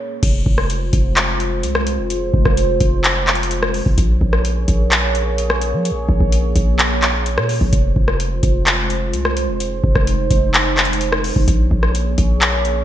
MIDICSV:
0, 0, Header, 1, 4, 480
1, 0, Start_track
1, 0, Key_signature, -4, "minor"
1, 0, Tempo, 468750
1, 233, Time_signature, 4, 2, 24, 8
1, 13152, End_track
2, 0, Start_track
2, 0, Title_t, "Analog synth pad"
2, 0, Program_c, 0, 89
2, 0, Note_on_c, 0, 58, 76
2, 0, Note_on_c, 0, 68, 72
2, 0, Note_on_c, 0, 73, 87
2, 195, Note_off_c, 0, 68, 0
2, 196, Note_off_c, 0, 58, 0
2, 196, Note_off_c, 0, 73, 0
2, 235, Note_on_c, 0, 56, 80
2, 236, Note_on_c, 0, 65, 74
2, 236, Note_on_c, 0, 72, 91
2, 4036, Note_off_c, 0, 56, 0
2, 4036, Note_off_c, 0, 65, 0
2, 4036, Note_off_c, 0, 72, 0
2, 4075, Note_on_c, 0, 73, 88
2, 4076, Note_on_c, 0, 58, 82
2, 4076, Note_on_c, 0, 68, 73
2, 7876, Note_off_c, 0, 58, 0
2, 7876, Note_off_c, 0, 68, 0
2, 7876, Note_off_c, 0, 73, 0
2, 7914, Note_on_c, 0, 56, 80
2, 7914, Note_on_c, 0, 72, 84
2, 7915, Note_on_c, 0, 65, 72
2, 9815, Note_off_c, 0, 65, 0
2, 9833, Note_on_c, 0, 63, 71
2, 11715, Note_off_c, 0, 56, 0
2, 11715, Note_off_c, 0, 72, 0
2, 11734, Note_off_c, 0, 63, 0
2, 11754, Note_on_c, 0, 58, 81
2, 11754, Note_on_c, 0, 68, 71
2, 11755, Note_on_c, 0, 73, 88
2, 13152, Note_off_c, 0, 58, 0
2, 13152, Note_off_c, 0, 68, 0
2, 13152, Note_off_c, 0, 73, 0
2, 13152, End_track
3, 0, Start_track
3, 0, Title_t, "808-style bass"
3, 0, Program_c, 1, 38
3, 233, Note_on_c, 1, 29, 105
3, 464, Note_off_c, 1, 29, 0
3, 473, Note_on_c, 1, 29, 107
3, 934, Note_off_c, 1, 29, 0
3, 954, Note_on_c, 1, 29, 112
3, 1674, Note_on_c, 1, 36, 102
3, 1690, Note_off_c, 1, 29, 0
3, 2034, Note_on_c, 1, 29, 99
3, 2050, Note_off_c, 1, 36, 0
3, 2376, Note_off_c, 1, 29, 0
3, 2393, Note_on_c, 1, 29, 111
3, 2508, Note_off_c, 1, 29, 0
3, 2514, Note_on_c, 1, 29, 107
3, 2859, Note_off_c, 1, 29, 0
3, 2874, Note_on_c, 1, 29, 110
3, 3913, Note_off_c, 1, 29, 0
3, 3954, Note_on_c, 1, 29, 101
3, 4069, Note_off_c, 1, 29, 0
3, 4074, Note_on_c, 1, 34, 109
3, 4304, Note_off_c, 1, 34, 0
3, 4313, Note_on_c, 1, 34, 110
3, 4774, Note_off_c, 1, 34, 0
3, 4794, Note_on_c, 1, 34, 112
3, 5873, Note_on_c, 1, 53, 102
3, 5889, Note_off_c, 1, 34, 0
3, 6055, Note_on_c, 1, 34, 99
3, 6070, Note_off_c, 1, 53, 0
3, 6225, Note_off_c, 1, 34, 0
3, 6232, Note_on_c, 1, 34, 109
3, 6348, Note_off_c, 1, 34, 0
3, 6354, Note_on_c, 1, 34, 102
3, 6699, Note_off_c, 1, 34, 0
3, 6714, Note_on_c, 1, 34, 111
3, 7554, Note_on_c, 1, 46, 98
3, 7569, Note_off_c, 1, 34, 0
3, 7782, Note_off_c, 1, 46, 0
3, 7794, Note_on_c, 1, 34, 104
3, 7909, Note_off_c, 1, 34, 0
3, 7914, Note_on_c, 1, 29, 108
3, 8144, Note_off_c, 1, 29, 0
3, 8153, Note_on_c, 1, 29, 107
3, 8614, Note_off_c, 1, 29, 0
3, 8633, Note_on_c, 1, 29, 109
3, 9352, Note_on_c, 1, 36, 103
3, 9368, Note_off_c, 1, 29, 0
3, 9713, Note_on_c, 1, 29, 104
3, 9728, Note_off_c, 1, 36, 0
3, 10055, Note_off_c, 1, 29, 0
3, 10073, Note_on_c, 1, 29, 109
3, 10188, Note_off_c, 1, 29, 0
3, 10193, Note_on_c, 1, 29, 107
3, 10539, Note_off_c, 1, 29, 0
3, 10554, Note_on_c, 1, 29, 110
3, 11593, Note_off_c, 1, 29, 0
3, 11634, Note_on_c, 1, 29, 100
3, 11749, Note_off_c, 1, 29, 0
3, 11753, Note_on_c, 1, 34, 113
3, 11984, Note_off_c, 1, 34, 0
3, 11993, Note_on_c, 1, 34, 109
3, 12454, Note_off_c, 1, 34, 0
3, 12473, Note_on_c, 1, 34, 112
3, 13152, Note_off_c, 1, 34, 0
3, 13152, End_track
4, 0, Start_track
4, 0, Title_t, "Drums"
4, 233, Note_on_c, 9, 42, 92
4, 234, Note_on_c, 9, 36, 117
4, 234, Note_on_c, 9, 49, 107
4, 335, Note_off_c, 9, 42, 0
4, 336, Note_off_c, 9, 36, 0
4, 336, Note_off_c, 9, 49, 0
4, 473, Note_on_c, 9, 36, 102
4, 575, Note_off_c, 9, 36, 0
4, 593, Note_on_c, 9, 37, 74
4, 695, Note_off_c, 9, 37, 0
4, 715, Note_on_c, 9, 42, 83
4, 817, Note_off_c, 9, 42, 0
4, 952, Note_on_c, 9, 42, 76
4, 954, Note_on_c, 9, 36, 100
4, 1054, Note_off_c, 9, 42, 0
4, 1056, Note_off_c, 9, 36, 0
4, 1194, Note_on_c, 9, 39, 108
4, 1196, Note_on_c, 9, 42, 87
4, 1296, Note_off_c, 9, 39, 0
4, 1299, Note_off_c, 9, 42, 0
4, 1434, Note_on_c, 9, 42, 71
4, 1537, Note_off_c, 9, 42, 0
4, 1673, Note_on_c, 9, 42, 86
4, 1776, Note_off_c, 9, 42, 0
4, 1793, Note_on_c, 9, 37, 95
4, 1896, Note_off_c, 9, 37, 0
4, 1912, Note_on_c, 9, 42, 83
4, 2014, Note_off_c, 9, 42, 0
4, 2153, Note_on_c, 9, 42, 91
4, 2255, Note_off_c, 9, 42, 0
4, 2393, Note_on_c, 9, 36, 100
4, 2495, Note_off_c, 9, 36, 0
4, 2513, Note_on_c, 9, 37, 75
4, 2514, Note_on_c, 9, 36, 99
4, 2616, Note_off_c, 9, 36, 0
4, 2616, Note_off_c, 9, 37, 0
4, 2635, Note_on_c, 9, 42, 83
4, 2738, Note_off_c, 9, 42, 0
4, 2872, Note_on_c, 9, 42, 75
4, 2874, Note_on_c, 9, 36, 95
4, 2974, Note_off_c, 9, 42, 0
4, 2976, Note_off_c, 9, 36, 0
4, 3114, Note_on_c, 9, 39, 109
4, 3117, Note_on_c, 9, 42, 87
4, 3217, Note_off_c, 9, 39, 0
4, 3219, Note_off_c, 9, 42, 0
4, 3353, Note_on_c, 9, 39, 99
4, 3354, Note_on_c, 9, 42, 43
4, 3435, Note_off_c, 9, 42, 0
4, 3435, Note_on_c, 9, 42, 57
4, 3455, Note_off_c, 9, 39, 0
4, 3514, Note_off_c, 9, 42, 0
4, 3514, Note_on_c, 9, 42, 75
4, 3593, Note_off_c, 9, 42, 0
4, 3593, Note_on_c, 9, 42, 86
4, 3696, Note_off_c, 9, 42, 0
4, 3713, Note_on_c, 9, 37, 95
4, 3815, Note_off_c, 9, 37, 0
4, 3831, Note_on_c, 9, 46, 79
4, 3933, Note_off_c, 9, 46, 0
4, 3954, Note_on_c, 9, 36, 92
4, 4057, Note_off_c, 9, 36, 0
4, 4073, Note_on_c, 9, 42, 93
4, 4074, Note_on_c, 9, 36, 120
4, 4175, Note_off_c, 9, 42, 0
4, 4176, Note_off_c, 9, 36, 0
4, 4313, Note_on_c, 9, 36, 98
4, 4415, Note_off_c, 9, 36, 0
4, 4433, Note_on_c, 9, 37, 73
4, 4536, Note_off_c, 9, 37, 0
4, 4555, Note_on_c, 9, 42, 83
4, 4657, Note_off_c, 9, 42, 0
4, 4792, Note_on_c, 9, 42, 77
4, 4794, Note_on_c, 9, 36, 98
4, 4894, Note_off_c, 9, 42, 0
4, 4896, Note_off_c, 9, 36, 0
4, 5034, Note_on_c, 9, 39, 108
4, 5036, Note_on_c, 9, 42, 88
4, 5136, Note_off_c, 9, 39, 0
4, 5138, Note_off_c, 9, 42, 0
4, 5273, Note_on_c, 9, 42, 70
4, 5375, Note_off_c, 9, 42, 0
4, 5512, Note_on_c, 9, 42, 86
4, 5614, Note_off_c, 9, 42, 0
4, 5631, Note_on_c, 9, 37, 96
4, 5734, Note_off_c, 9, 37, 0
4, 5750, Note_on_c, 9, 42, 79
4, 5852, Note_off_c, 9, 42, 0
4, 5992, Note_on_c, 9, 42, 90
4, 6095, Note_off_c, 9, 42, 0
4, 6233, Note_on_c, 9, 36, 98
4, 6335, Note_off_c, 9, 36, 0
4, 6354, Note_on_c, 9, 36, 100
4, 6456, Note_off_c, 9, 36, 0
4, 6476, Note_on_c, 9, 42, 84
4, 6578, Note_off_c, 9, 42, 0
4, 6713, Note_on_c, 9, 42, 76
4, 6714, Note_on_c, 9, 36, 96
4, 6815, Note_off_c, 9, 42, 0
4, 6816, Note_off_c, 9, 36, 0
4, 6954, Note_on_c, 9, 39, 109
4, 6956, Note_on_c, 9, 42, 86
4, 7056, Note_off_c, 9, 39, 0
4, 7059, Note_off_c, 9, 42, 0
4, 7193, Note_on_c, 9, 39, 102
4, 7194, Note_on_c, 9, 42, 68
4, 7295, Note_off_c, 9, 39, 0
4, 7297, Note_off_c, 9, 42, 0
4, 7435, Note_on_c, 9, 42, 84
4, 7537, Note_off_c, 9, 42, 0
4, 7554, Note_on_c, 9, 37, 99
4, 7656, Note_off_c, 9, 37, 0
4, 7672, Note_on_c, 9, 46, 81
4, 7774, Note_off_c, 9, 46, 0
4, 7794, Note_on_c, 9, 36, 95
4, 7897, Note_off_c, 9, 36, 0
4, 7912, Note_on_c, 9, 42, 93
4, 7914, Note_on_c, 9, 36, 118
4, 8015, Note_off_c, 9, 42, 0
4, 8016, Note_off_c, 9, 36, 0
4, 8153, Note_on_c, 9, 36, 99
4, 8255, Note_off_c, 9, 36, 0
4, 8273, Note_on_c, 9, 37, 74
4, 8375, Note_off_c, 9, 37, 0
4, 8396, Note_on_c, 9, 42, 84
4, 8498, Note_off_c, 9, 42, 0
4, 8632, Note_on_c, 9, 42, 74
4, 8634, Note_on_c, 9, 36, 100
4, 8734, Note_off_c, 9, 42, 0
4, 8736, Note_off_c, 9, 36, 0
4, 8874, Note_on_c, 9, 39, 114
4, 8876, Note_on_c, 9, 42, 89
4, 8976, Note_off_c, 9, 39, 0
4, 8979, Note_off_c, 9, 42, 0
4, 9114, Note_on_c, 9, 42, 71
4, 9217, Note_off_c, 9, 42, 0
4, 9354, Note_on_c, 9, 42, 84
4, 9457, Note_off_c, 9, 42, 0
4, 9473, Note_on_c, 9, 37, 92
4, 9576, Note_off_c, 9, 37, 0
4, 9592, Note_on_c, 9, 42, 80
4, 9694, Note_off_c, 9, 42, 0
4, 9833, Note_on_c, 9, 42, 91
4, 9936, Note_off_c, 9, 42, 0
4, 10073, Note_on_c, 9, 36, 99
4, 10175, Note_off_c, 9, 36, 0
4, 10193, Note_on_c, 9, 36, 102
4, 10194, Note_on_c, 9, 37, 74
4, 10296, Note_off_c, 9, 36, 0
4, 10296, Note_off_c, 9, 37, 0
4, 10315, Note_on_c, 9, 42, 83
4, 10417, Note_off_c, 9, 42, 0
4, 10553, Note_on_c, 9, 42, 75
4, 10554, Note_on_c, 9, 36, 97
4, 10655, Note_off_c, 9, 42, 0
4, 10656, Note_off_c, 9, 36, 0
4, 10794, Note_on_c, 9, 39, 110
4, 10797, Note_on_c, 9, 42, 90
4, 10897, Note_off_c, 9, 39, 0
4, 10899, Note_off_c, 9, 42, 0
4, 11032, Note_on_c, 9, 39, 101
4, 11033, Note_on_c, 9, 42, 45
4, 11113, Note_off_c, 9, 42, 0
4, 11113, Note_on_c, 9, 42, 57
4, 11135, Note_off_c, 9, 39, 0
4, 11193, Note_off_c, 9, 42, 0
4, 11193, Note_on_c, 9, 42, 72
4, 11273, Note_off_c, 9, 42, 0
4, 11273, Note_on_c, 9, 42, 84
4, 11375, Note_off_c, 9, 42, 0
4, 11391, Note_on_c, 9, 37, 97
4, 11494, Note_off_c, 9, 37, 0
4, 11511, Note_on_c, 9, 46, 79
4, 11613, Note_off_c, 9, 46, 0
4, 11634, Note_on_c, 9, 36, 95
4, 11736, Note_off_c, 9, 36, 0
4, 11753, Note_on_c, 9, 36, 115
4, 11753, Note_on_c, 9, 42, 94
4, 11855, Note_off_c, 9, 42, 0
4, 11856, Note_off_c, 9, 36, 0
4, 11993, Note_on_c, 9, 36, 98
4, 12095, Note_off_c, 9, 36, 0
4, 12112, Note_on_c, 9, 37, 72
4, 12215, Note_off_c, 9, 37, 0
4, 12235, Note_on_c, 9, 42, 83
4, 12337, Note_off_c, 9, 42, 0
4, 12471, Note_on_c, 9, 42, 77
4, 12473, Note_on_c, 9, 36, 98
4, 12574, Note_off_c, 9, 42, 0
4, 12576, Note_off_c, 9, 36, 0
4, 12712, Note_on_c, 9, 39, 109
4, 12715, Note_on_c, 9, 42, 90
4, 12815, Note_off_c, 9, 39, 0
4, 12817, Note_off_c, 9, 42, 0
4, 12953, Note_on_c, 9, 42, 69
4, 13056, Note_off_c, 9, 42, 0
4, 13152, End_track
0, 0, End_of_file